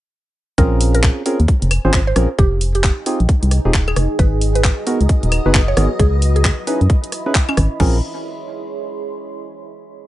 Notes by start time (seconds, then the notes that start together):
0.58 A#1 C4 C#4 F4 G#4 A#4, kick, closed hi-hat
0.81 open hi-hat
0.95 A#4, closed hi-hat
1.03 C5, kick, clap, closed hi-hat
1.26 C4 C#4 F4 G#4 A#4, open hi-hat
1.40 D#2, closed hi-hat
1.48 kick, closed hi-hat
1.62 F1, closed hi-hat
1.71 cross-stick, open hi-hat, claves
1.85 G#1 C4 C#4 F4 G#4 C5
1.93 kick, clap, closed hi-hat
2.07 C5
2.16 A#1 C4 C#4 F4 G#4 A#4, cross-stick, open hi-hat
2.39 F1 D#4 G4, kick, closed hi-hat
2.60 G5, open hi-hat
2.75 G4, closed hi-hat
2.84 kick, clap, closed hi-hat
2.90 G#4
3.06 C4 D#4 F4 G4 G#4, open hi-hat
3.20 A#1, closed hi-hat
3.29 kick, closed hi-hat
3.43 C2, closed hi-hat
3.51 cross-stick, open hi-hat
3.65 D#1 C4 D#4 F4 G4 G#4
3.74 kick, clap, closed hi-hat
3.88 G#4, claves
3.96 F1, cross-stick, open hi-hat
4.19 G#1 F#4 B4 D#5, kick, closed hi-hat
4.38 A#5, open hi-hat
4.55 B4, closed hi-hat
4.64 kick, clap, closed hi-hat
4.84 B3 D#4 F#4 G#4 A#4 B4, open hi-hat
5.01 C#2, closed hi-hat
5.09 kick, closed hi-hat
5.23 D#1, closed hi-hat
5.32 cross-stick, open hi-hat, claves
5.46 F#1 B3 D#4 F#4 G#4 B4
5.54 kick, clap, closed hi-hat
5.68 C#5
5.77 G#1 B3 D#4 F#4 G#4 A#4, cross-stick, open hi-hat
5.99 C#2 E4 G#4, kick, closed hi-hat
6.19 B5, open hi-hat
6.36 G#4, closed hi-hat
6.45 kick, clap, closed hi-hat
6.62 D#5
6.67 C#4 D#4 E4 G#4 B4, open hi-hat
6.81 F#2, closed hi-hat
6.90 kick, closed hi-hat
7.04 closed hi-hat
7.12 cross-stick, open hi-hat
7.26 C#4 D#4 E4 G#4 B4
7.35 kick, clap, closed hi-hat
7.49 C#4, claves
7.57 G#1, kick, cross-stick, open hi-hat
7.80 A#1 C4 C#4 F4 G#4 A#4, kick, crash
7.88 C#5
7.95 C6